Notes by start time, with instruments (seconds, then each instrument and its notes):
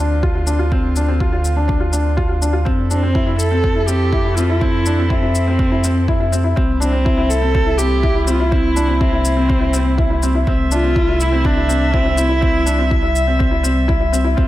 Already playing: sub bass D2, string quartet D3 C4 F4, felt piano D4
0.23 felt piano F4, kick
0.35 felt piano F4
0.47 felt piano D4, shaker
0.59 felt piano F4
0.72 felt piano C4, kick
0.96 felt piano D4, shaker
1.08 felt piano C4
1.20 felt piano F4, kick
1.32 felt piano F4
1.45 shaker
1.56 felt piano D4
1.68 felt piano D4, kick
1.80 felt piano F4
1.92 felt piano D4, shaker
2.17 felt piano F4, kick
2.29 felt piano F4
2.41 felt piano D4, shaker
2.53 felt piano F4
2.65 sub bass F2, string quartet F3 E4 A4, felt piano C4, kick
2.91 viola C4, felt piano D4, shaker
3.03 felt piano C4
3.15 felt piano E4, kick
3.26 felt piano E4
3.39 viola A4, shaker
3.51 felt piano C4
3.64 felt piano C4, kick
3.76 felt piano E4
3.80 viola A4
3.86 felt piano C4, viola G4, shaker
4.13 felt piano E4, kick
4.25 felt piano E4
4.35 felt piano C4, viola F4, shaker
4.50 felt piano E4
4.60 felt piano C4, viola E4, kick
4.86 felt piano D4, shaker
4.99 felt piano C4
5.09 viola C4, felt piano E4, kick
5.23 felt piano E4
5.35 shaker
5.48 felt piano C4
5.59 felt piano C4, kick
5.72 felt piano E4
5.84 felt piano C4, shaker
6.08 felt piano E4, kick
6.20 felt piano E4
6.32 felt piano C4, shaker
6.44 felt piano E4
6.55 sub bass C2, string quartet C3 A#3 E4, felt piano C4, kick
6.80 viola C4, felt piano D4, shaker
6.93 felt piano C4
7.05 felt piano E4, kick
7.18 felt piano E4
7.30 viola A4, shaker
7.42 felt piano C4
7.54 felt piano C4, kick
7.66 felt piano E4
7.78 felt piano C4, viola G4, shaker
8.03 felt piano E4, kick
8.15 felt piano E4
8.27 felt piano C4, viola F4, shaker
8.40 felt piano E4
8.51 felt piano C4, viola E4, kick
8.76 felt piano D4, shaker
8.88 felt piano C4
9.00 viola C4, felt piano E4, kick
9.13 felt piano E4
9.25 shaker
9.37 felt piano C4
9.49 felt piano C4, kick
9.60 felt piano E4
9.73 felt piano C4, shaker
9.98 felt piano E4, kick
10.10 felt piano E4
10.23 felt piano C4, shaker
10.35 felt piano E4
10.47 sub bass C2, string quartet A3 E5, felt piano C4, kick
10.71 felt piano D4, viola F4, shaker
10.84 felt piano C4
10.96 felt piano E4, kick
11.08 felt piano E4
11.20 viola E4, shaker
11.32 felt piano C4
11.44 felt piano C4, viola D4, kick
11.57 felt piano E4
11.68 felt piano C4, shaker
11.93 viola C4, felt piano E4, kick
12.05 felt piano E4
12.17 felt piano C4, viola E4, shaker
12.29 felt piano E4
12.41 string quartet G3, felt piano C4, kick
12.66 felt piano D4, shaker
12.78 felt piano C4
12.91 felt piano E4, kick
13.03 felt piano E4
13.16 shaker
13.27 felt piano C4
13.39 felt piano C4, kick
13.51 felt piano E4
13.63 felt piano C4, shaker
13.88 felt piano E4, kick
14.00 felt piano E4
14.12 felt piano C4, shaker
14.24 felt piano E4
14.37 sub bass D2, string quartet D3 C4 F4, felt piano C4, kick